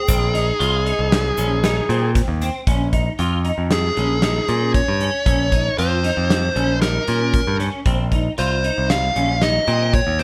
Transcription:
Already playing: lead electric guitar G#4
0.08 picked electric bass A#1, clean electric guitar C4, kick, closed hi-hat, shaker
0.34 clean electric guitar D#4, closed hi-hat
0.59 picked electric bass C2, clean electric guitar F4, closed hi-hat
0.86 clean electric guitar D#4, closed hi-hat
0.99 picked electric bass C2
1.12 snare, closed hi-hat
1.38 picked electric bass A#1, clean electric guitar C#4, closed hi-hat, shaker
1.64 clean electric guitar D#4, snare, closed hi-hat, shaker
1.89 picked electric bass A#2, clean electric guitar C4, closed hi-hat
2.15 kick, snare, closed hi-hat, shaker
2.28 picked electric bass D#2
2.42 clean electric guitar C4, closed hi-hat, shaker
2.67 picked electric bass A#1, clean electric guitar C#4, kick, closed hi-hat
2.93 clean electric guitar D#4, kick, closed hi-hat
3.19 picked electric bass F2, clean electric guitar F4, closed hi-hat
3.44 clean electric guitar D#4, closed hi-hat
3.58 picked electric bass F2
3.71 lead electric guitar G#4, snare, closed hi-hat
3.96 picked electric bass A#1, clean electric guitar C#4, closed hi-hat
4.22 clean electric guitar D#4, snare, closed hi-hat
4.48 picked electric bass A#2, clean electric guitar C#4, closed hi-hat
4.74 lead electric guitar C#5, kick, closed hi-hat
4.88 picked electric bass G2
5.00 clean electric guitar C#4, closed hi-hat
5.26 picked electric bass A#1, clean electric guitar C#4, kick, closed hi-hat
5.52 clean electric guitar D#4, kick, closed hi-hat
5.78 picked electric bass F2, clean electric guitar F4, lead electric guitar C5, closed hi-hat
6.04 clean electric guitar D#4, snare, closed hi-hat
6.17 picked electric bass F2
6.30 snare, closed hi-hat
6.56 picked electric bass A#1, clean electric guitar C#4, closed hi-hat
6.82 clean electric guitar D#4, lead electric guitar A#4, snare, closed hi-hat
7.08 picked electric bass A#2, clean electric guitar C#4, closed hi-hat
7.33 kick, closed hi-hat
7.47 picked electric bass G2
7.60 clean electric guitar C#4, snare, closed hi-hat
7.86 picked electric bass A#1, clean electric guitar C4, kick, closed hi-hat
8.12 clean electric guitar D#4, kick, closed hi-hat
8.38 picked electric bass C2, clean electric guitar F4, lead electric guitar C5, closed hi-hat
8.64 clean electric guitar D#4, closed hi-hat
8.78 picked electric bass C2
8.90 lead electric guitar F5, snare, closed hi-hat
9.16 picked electric bass A#1, clean electric guitar C#4, closed hi-hat
9.41 clean electric guitar D#4, lead electric guitar D#5, snare, closed hi-hat
9.67 picked electric bass A#2, clean electric guitar C4, closed hi-hat
9.93 lead electric guitar C#5, kick, closed hi-hat
10.07 picked electric bass D#2
10.19 clean electric guitar C4, closed hi-hat

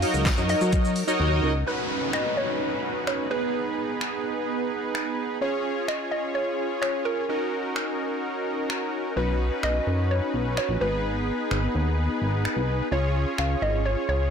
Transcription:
Already playing: supersaw synth F#3 D#4 A#4, synth pluck F5
0.02 analog polysynth D#4 F#4 A#4 C#5 D#5, open hi-hat, shaker
0.14 analog synth bass C#2, shaker
0.25 kick, snare, clap, closed hi-hat, tambourine, shaker
0.38 analog synth bass F#2, analog polysynth D#4 F#4 A#4 C#5 D#5, shaker
0.49 synth pluck D#5, open hi-hat, shaker
0.61 analog synth bass F#3, shaker
0.73 kick, closed hi-hat, shaker
0.85 shaker
0.96 open hi-hat, shaker
1.07 analog polysynth D#4 F#4 A#4 C#5 D#5, shaker
1.20 analog synth bass D#2
1.43 analog synth bass C#2
1.66 analog polysynth C#4 D#4 F#4 B4, synth pluck B4, downlifter
2.13 synth pluck D#5, finger snap
2.37 synth pluck C#5
3.07 synth pluck C#5, finger snap
3.30 analog polysynth B3 D#4 G#4 B4, synth pluck B4
4.01 finger snap
4.95 finger snap
5.41 analog polysynth C#4 F4 G#4 C#5, synth pluck C#5
5.88 synth pluck D#5, finger snap
6.11 synth pluck D#5
6.35 synth pluck C#5
6.82 synth pluck C#5, finger snap
7.05 synth pluck A#4
7.29 analog polysynth C#4 D#4 F#4 A#4
7.76 finger snap
8.70 finger snap
9.16 analog synth bass B1, analog polysynth C#4 D#4 F#4 B4, synth pluck B4
9.63 analog synth bass B1, synth pluck D#5, finger snap
9.87 analog synth bass F#2
10.11 synth pluck C#5
10.34 analog synth bass B1
10.57 synth pluck C#5, finger snap
10.69 analog synth bass A#1
10.80 analog synth bass G#1, analog polysynth B3 D#4 G#4 B4, synth pluck B4
11.51 analog synth bass G#1, finger snap
11.75 analog synth bass D#2
12.22 analog synth bass G#1
12.45 finger snap
12.57 analog synth bass C2
12.91 analog synth bass C#2, analog polysynth C#4 F4 G#4 C#5, synth pluck C#5
13.38 analog synth bass C#2, synth pluck F5, finger snap
13.62 analog synth bass G#1, synth pluck D#5
13.86 synth pluck C#5
14.09 analog synth bass C#2, synth pluck C#5

